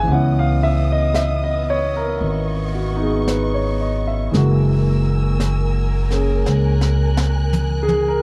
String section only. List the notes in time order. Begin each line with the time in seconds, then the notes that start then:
0.08 B3 D#5 D#6
2.19 C#6
4.33 A#4 G#5 E6
6.45 F#6